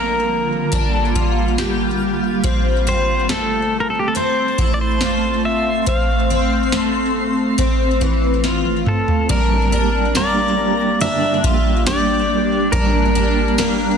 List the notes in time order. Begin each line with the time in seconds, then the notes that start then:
Already playing: D3 G3 A#3 F4 A#4
0.72 D4, kick, closed hi-hat
0.94 A4
1.15 F4 F5, kick
1.58 G4, snare, closed hi-hat
2.44 A3 C4, kick, closed hi-hat
2.87 C4 C5
3.29 A3 A4, snare, closed hi-hat
3.73 A5
3.80 A#4
3.90 A4
3.99 G4
4.08 A4
4.15 C4 C5, closed hi-hat
4.58 E4 C6, kick
4.74 D5
4.81 C5
5.01 F4, snare, closed hi-hat
5.45 E5
5.86 C4 F5 C6, kick, closed hi-hat
6.30 C4
6.72 A3, snare, closed hi-hat
7.58 C4, kick, closed hi-hat
8.01 E3, kick
8.44 F4, snare, closed hi-hat
8.65 high tom
8.86 A4, mid tom
9.08 floor tom
9.29 G2 D3 G3 A#3 D4 G4 A#4 A#5, kick, ride
9.71 G3 A#3 D4 G4
10.14 G3 A#3 D4 D5, snare, ride, tambourine
10.18 G4
10.57 A#3 D4 G4
10.61 G3
11.00 G2 D3 G3 A#3 D4 G4 E5, ride
11.42 G3 F4 G4, kick
11.85 G3 A#3 D4 G4 D5, snare, ride, tambourine
12.28 A#3 D4 G4
12.32 G3
12.72 G2 D3 G3 A#3 D4 G4 A#4, kick, ride
13.15 G3 A#3 D4 G4
13.57 G3 A#3 D4 G4, snare, ride, tambourine